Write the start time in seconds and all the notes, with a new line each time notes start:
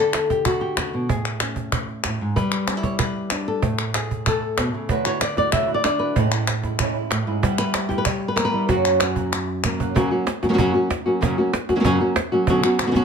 Already playing: D3 A4 D5
0.13 cajon slap, clap
0.30 G4, cajon bass
0.45 F#4, cajon bass, clap
0.61 G4, cajon slap
0.77 C#3 F#4, cajon bass, cajon slap, clap
0.93 B2, cajon slap
1.09 A2 G#4, cajon bass
1.25 clap
1.40 C#4, cajon slap, clap
1.56 cajon bass
1.72 cajon bass, clap
1.88 cajon slap
2.04 A2, cajon bass, cajon slap, clap
2.21 G#2, cajon slap
2.36 G3 B4, cajon bass
2.52 clap
2.67 C#4, cajon slap, clap
2.77 E4
2.83 C#5, cajon bass
2.99 B4, cajon bass, clap
3.15 cajon slap
3.30 D4, cajon slap, clap
3.47 A4, cajon slap
3.62 A2, cajon bass
3.79 clap
3.94 G#4, cajon slap, clap
4.11 cajon bass
4.26 A4, cajon bass, clap
4.43 cajon slap
4.57 B2, cajon bass, cajon slap, clap
4.74 C#3, cajon slap
4.89 D3 F#3 A3 E4 F#4 B4, cajon bass
5.04 A3 E4 F#4 C#5, clap
5.20 D5, muted nylon-string guitar stroke, cajon slap, clap
5.37 A3 E4 F#4 D5, cajon bass, cajon slap
5.51 D3 F#3 A3 E4 F#4 E5, cajon bass, clap
5.67 A3 E4 F#4, cajon slap
5.74 D5
5.84 D4 D5, muted nylon-string guitar stroke, cajon slap, clap
5.99 A3 E4 F#4 B4, cajon slap
6.16 A2 E3 G#3 C#4 E4 C#5, cajon bass
6.32 G#3 C#4 E4, clap
6.47 muted nylon-string guitar stroke, cajon slap, clap
6.63 G#3 C#4 E4, cajon bass, cajon slap
6.79 A2 E3 G#3 C#4 E4, cajon bass, clap
6.95 G#3 C#4 E4, cajon slap
7.11 A2, muted nylon-string guitar stroke, cajon slap, clap
7.27 G#2 G#3 C#4 E4
7.42 G3 B3 E4, cajon bass
7.58 B4, clap
7.74 G3 B3 E4 G4, cajon slap, clap
7.89 B3 E4 G4, cajon bass, cajon slap
7.98 B4
8.05 C#5, muted nylon-string guitar stroke, cajon bass, clap
8.22 cajon slap
8.28 B4
8.36 A#3 A#4, cajon slap, clap
8.45 B4
8.52 G3 B3 E4, cajon slap
8.68 F#2 C#3 F#3 A#3 C#4 F#4, cajon bass
8.85 clap
9.00 F#3 A#3 C#4 F#4, cajon slap, clap
9.16 F#3 A#3 C#4 F#4, cajon bass
9.32 muted nylon-string guitar stroke, cajon slap, clap
9.64 A#3, cajon bass, clap
9.80 F#3 A#3 C#4 F#4, cajon bass
9.95 F#2 C#3 F#3 A#3 C#4 F#4, cajon bass
10.11 F#3 A#3 C#4 F#4
10.26 muted nylon-string guitar stroke, cajon slap
10.42 C#3 F#3 A#3 C#4 F#4, cajon bass, cajon slap
10.49 C#3 F#3 A#3 C#4 F#4
10.53 C#3 F#3 A#3 C#4 F#4
10.58 F#2 C#3 F#3 A#3 C#4 F#4, cajon bass
10.74 F#3 A#3 C#4 F#4, cajon slap
10.90 muted nylon-string guitar stroke, cajon bass, cajon slap
11.06 F#3 A#3 C#4 F#4, cajon slap
11.21 F#2 C#3 F#3 A#3 C#4 F#4, cajon bass
11.38 F#3 A#3 C#4 F#4
11.53 muted nylon-string guitar stroke, cajon slap
11.69 F#3 A#3 C#4 F#4, cajon bass, cajon slap
11.75 C#3 F#3 A#3 C#4 F#4
11.80 C#3 F#3 A#3 C#4 F#4
11.84 F#2 C#3 F#3 A#3 C#4 F#4, cajon bass
12.00 F#3 A#3 C#4 F#4
12.16 muted nylon-string guitar stroke, cajon bass, cajon slap
12.32 F#3 A#3 C#4 F#4, cajon slap
12.47 B2 D3 F#3 B3 C#4 F#4, cajon bass
12.64 F#3 B3 C#4 F#4, clap
12.79 D3 F#3 B3, cajon slap, clap
12.83 D3 F#3 B3 C#4 F#4
12.88 D3 F#3 C#4 F#4
12.92 B2 B3 C#4 F#4, cajon bass
12.96 D3 F#3 B3 C#4 F#4